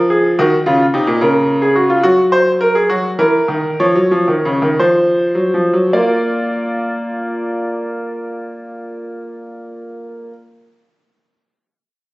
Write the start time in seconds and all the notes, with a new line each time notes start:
Already playing: F3
0.10 G#4
0.39 D#3 F#4
0.66 C#3 F4
0.94 C3 D#4
1.07 A#2
1.21 C#3 A#4
1.62 G#4
1.76 F#4
1.90 F4
2.03 F#3 F#4
2.32 C5
2.61 A#4
2.75 G#4
2.89 F#3 F#4
3.19 E3 A#4
3.48 D#3
3.80 F3 C#5
3.95 F#3
4.11 F3
4.28 D#3
4.45 C#3
4.62 D#3
4.79 F3 C5
5.35 F#3
5.54 F3
5.73 F#3
5.93 A#3 F4 A#4 D5